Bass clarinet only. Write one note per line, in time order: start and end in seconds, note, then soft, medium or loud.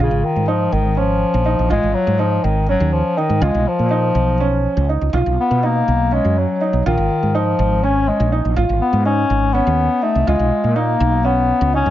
0.01 0.27 C#3 medium
0.25 0.50 D#3 medium
0.48 0.75 F3 medium
0.73 1.00 D#3 medium
0.98 1.71 F3 medium
1.71 1.96 G#3 loud
1.94 2.21 F#3 loud
2.19 2.46 F3 medium
2.44 2.69 D#3 medium
2.70 2.94 F#3 medium
2.93 3.19 F3 medium
3.18 3.44 D#3 medium
3.42 3.69 G#3 medium
3.67 4.90 F3 medium
5.40 5.66 B3 medium
5.64 6.15 A#3 medium
6.14 6.39 G#3 medium
6.38 6.86 F#3 medium
6.86 7.37 D#3 medium
7.36 7.85 F3 medium
7.84 8.10 C#4 medium
8.08 8.33 G#3 medium
8.81 9.04 B3 medium
9.05 9.55 C#4 medium
9.54 10.04 B3 medium
10.03 10.28 A3 medium
10.28 10.77 G#3 medium
10.76 11.27 A#3 medium
11.25 11.74 B3 medium
11.75 11.90 C#4 loud